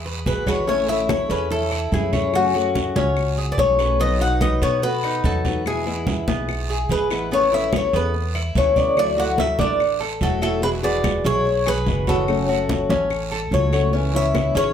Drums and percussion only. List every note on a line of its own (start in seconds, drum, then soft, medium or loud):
0.06 high conga soft
0.26 high conga medium
0.26 short guiro medium
0.46 high conga medium
0.46 short guiro medium
0.46 claves medium
0.67 high conga soft
0.67 long guiro medium
0.88 high conga soft
1.09 high conga medium
1.09 short guiro medium
1.09 claves medium
1.30 high conga soft
1.30 short guiro medium
1.51 high conga soft
1.51 long guiro medium
1.72 high conga soft
1.72 claves medium
1.92 high conga medium
1.92 short guiro medium
2.13 high conga medium
2.13 short guiro medium
2.34 high conga soft
2.34 long guiro medium
2.34 claves medium
2.55 high conga soft
2.75 high conga medium
2.75 short guiro medium
2.96 high conga medium
2.96 short guiro medium
3.17 high conga soft
3.17 long guiro medium
3.17 claves medium
3.37 high conga soft
3.58 high conga medium
3.58 short guiro medium
3.79 short guiro medium
3.79 claves medium
3.99 high conga soft
3.99 long guiro medium
4.20 high conga soft
4.41 high conga medium
4.41 short guiro medium
4.41 claves medium
4.62 high conga soft
4.62 short guiro medium
4.82 high conga soft
4.82 long guiro medium
5.03 high conga soft
5.03 claves medium
5.24 high conga medium
5.24 short guiro medium
5.45 high conga medium
5.45 short guiro medium
5.66 high conga soft
5.66 long guiro medium
5.66 claves medium
5.87 high conga soft
6.07 high conga medium
6.07 short guiro medium
6.28 high conga medium
6.28 short guiro medium
6.48 high conga soft
6.48 long guiro medium
6.48 claves medium
6.69 high conga soft
6.89 high conga medium
6.89 short guiro medium
7.10 short guiro medium
7.10 claves medium
7.31 high conga soft
7.31 long guiro medium
7.52 high conga soft
7.73 high conga medium
7.73 short guiro medium
7.73 claves medium
7.93 high conga soft
7.93 short guiro medium
8.14 high conga soft
8.14 long guiro medium
8.35 high conga soft
8.35 claves medium
8.55 high conga medium
8.55 short guiro medium
8.76 high conga medium
8.76 short guiro medium
8.97 high conga soft
8.97 long guiro medium
8.97 claves medium
9.18 high conga soft
9.38 high conga medium
9.38 short guiro medium
9.59 high conga medium
9.59 short guiro medium
9.80 high conga soft
9.80 long guiro medium
9.80 claves medium
10.00 high conga soft
10.21 high conga medium
10.21 short guiro medium
10.42 short guiro medium
10.42 claves medium
10.62 high conga soft
10.62 long guiro medium
10.83 high conga soft
11.04 high conga medium
11.04 short guiro medium
11.04 claves medium
11.24 high conga soft
11.24 short guiro medium
11.45 high conga soft
11.45 long guiro medium
11.66 high conga soft
11.66 claves medium
11.87 high conga medium
11.87 short guiro medium
12.07 high conga medium
12.07 short guiro medium
12.28 high conga soft
12.28 long guiro medium
12.28 claves medium
12.49 high conga soft
12.69 high conga medium
12.69 short guiro medium
12.90 high conga medium
12.90 short guiro medium
13.10 high conga soft
13.10 long guiro medium
13.10 claves medium
13.32 high conga soft
13.52 high conga medium
13.52 short guiro medium
13.73 short guiro medium
13.73 claves medium
13.93 high conga soft
13.93 long guiro medium
14.14 high conga soft
14.35 high conga medium
14.35 short guiro medium
14.35 claves medium
14.55 high conga soft
14.55 short guiro medium